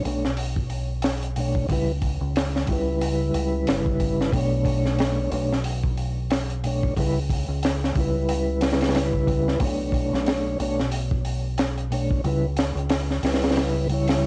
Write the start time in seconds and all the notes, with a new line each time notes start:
0.04 B1 B2 A3 D4 C#5, open hi-hat
0.25 snare
0.37 open hi-hat
0.56 kick
0.70 open hi-hat
1.02 snare, open hi-hat
1.23 closed hi-hat
1.36 B2 A3 D4 C#5, open hi-hat
1.55 kick
1.69 C#2 C#3 G3 E4 B4, kick, open hi-hat
2.02 kick, open hi-hat
2.21 C#2
2.36 snare, open hi-hat
2.56 snare
2.67 C#2 C#3 G3, kick, open hi-hat
2.71 E4 B4
3.01 open hi-hat
3.34 C#2, open hi-hat
3.67 G1, snare, open hi-hat
3.86 kick
4.00 kick, open hi-hat
4.21 snare
4.31 B1 B2 A3, kick, open hi-hat
4.36 D4 C#5
4.65 kick, open hi-hat
4.85 snare
4.98 snare, open hi-hat
5.31 B1 B2 A3 D4 C#5, open hi-hat
5.52 snare
5.64 open hi-hat
5.83 kick
5.97 open hi-hat
6.30 snare, open hi-hat
6.50 closed hi-hat
6.63 B2 A3 D4 C#5, open hi-hat
6.83 kick
6.96 C#2 C#3 G3 E4 B4, kick, open hi-hat
7.29 kick, open hi-hat
7.48 C#2
7.63 snare, open hi-hat
7.84 snare
7.94 C#2 C#3 G3, kick, open hi-hat
7.98 E4 B4
8.29 open hi-hat
8.61 snare, open hi-hat
8.70 snare, open hi-hat
8.81 snare, open hi-hat
8.87 snare, open hi-hat
8.95 snare, open hi-hat
9.13 kick
9.27 kick, open hi-hat
9.48 snare
9.59 B1 B2 A3, kick, open hi-hat
9.63 D4 C#5
9.92 kick, open hi-hat
10.13 B1, snare
10.26 snare, open hi-hat
10.59 B1 B2 A3 D4 C#5, open hi-hat
10.79 snare
10.92 open hi-hat
11.11 kick
11.25 open hi-hat
11.58 snare, open hi-hat
11.78 closed hi-hat
11.91 B2 A3 D4 C#5, open hi-hat
12.11 kick
12.24 C#2 C#3 G3 E4 B4, open hi-hat
12.57 snare, open hi-hat
12.75 C#2, closed hi-hat
12.89 snare, open hi-hat
13.11 snare
13.23 C#2 C#3 G3 E4 B4, snare, open hi-hat
13.32 snare, open hi-hat
13.42 snare, open hi-hat
13.49 snare, open hi-hat
13.56 snare, open hi-hat
13.87 C#3 G3, open hi-hat
13.92 E4 C#5
14.08 snare, open hi-hat